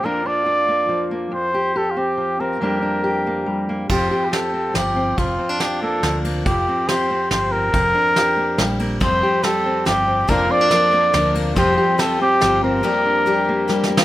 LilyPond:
<<
  \new Staff \with { instrumentName = "Trumpet" } { \time 3/4 \key bes \lydian \tempo 4 = 141 bes'8 d''2 r8 | c''4 \tuplet 3/2 { a'8 f'16 g'8.~ } g'8 bes'8~ | bes'2~ bes'8 r8 | \tuplet 3/2 { c''4~ c''16 g'16 } a'4 g'4 |
f'4 g'8 a'4 r8 | g'4 c''4 c''8 bes'8~ | bes'2~ bes'8 r8 | c''4 a'4 g'4 |
bes'8 d''2 r8 | c''4 a'8 g'4 bes'8~ | bes'2~ bes'8 r8 | }
  \new Staff \with { instrumentName = "Steel-string acoustic guitar" } { \time 3/4 \key bes \lydian << { <f bes d' f'>8 d'8 f'8 bes4 bes8 | r8 g'8 g'8 c'4 c'8 | <g bes d' g'>8 d'8 g'8 bes4 bes8 | <f c' g'>8 g'8 g'8 c'4 c'8 |
r8 c'16 d'16 f'8 bes4 bes8 | r8 c'8 g'8 c'4 c'8 | r8 d'8 g'8 bes4 bes8 | r8 g'8 g'8 c'4 c'8 |
<f bes d' f'>8 c'16 d'16 f'8 bes4 bes8 | <f c' g'>8 g'8 g'8 c'4 c'8 | r8 d'8 g'8 bes4 bes8 | } \\ { f,2 f4 | f,2 f4 | f,2 g4 | f,2 f4 |
f,2 f4 | f,2 f4 | f,2 g4 | f,2 f4 |
f,2 f4 | f,2 f4 | f,2 g4 | } >> }
  \new Staff \with { instrumentName = "Twelve-string acoustic guitar" } { \time 3/4 \key bes \lydian r2. | r2. | r2. | r2. |
r2. | r2. | r2. | <f g c' f' g'>4 <g c' f' g'>4 <g c' f' g'>4 |
<f bes d' bes'>4 <f bes d' bes'>8 <bes d' bes'>8 <f bes d' bes'>4 | <f g c' f' g'>4 <g c' f' g'>4 <g c' f' g'>4 | <f g bes d' g'>4 <g bes d' g'>4 <g bes d' g'>4 | }
  \new Staff \with { instrumentName = "Fingered electric bass" } { \clef bass \time 3/4 \key bes \lydian r2. | r2. | r2. | f,,8 r4. g,,4 |
f,,8 r4. d,4 | f,,8 r4. g,,4 | f,,8 r4. bes,,4 | f,,8 r4. g,,4 |
f,,8 r4. d,4 | f,,8 r4. g,,4 | r2. | }
  \new DrumStaff \with { instrumentName = "Drums" } \drummode { \time 3/4 r4 r4 r4 | r4 r4 r4 | r4 r4 r4 | <cymc bd>4 <cymr sn>4 <cymr sn>4 |
<bd cymr>4 <cymr sn>4 <cymr sn>8 cymr8 | <bd cymr>4 <cymr sn>4 <cymr sn>4 | <bd cymr>4 <cymr sn>4 <cymr sn>8 cymr8 | <bd cymr>4 <cymr sn>4 <cymr sn>4 |
<bd cymr>4 <cymr sn>4 <cymr sn>8 cymr8 | <bd cymr>4 <cymr sn>4 <cymr sn>4 | r4 r4 \tuplet 3/2 { sn8 sn8 sn8 } | }
>>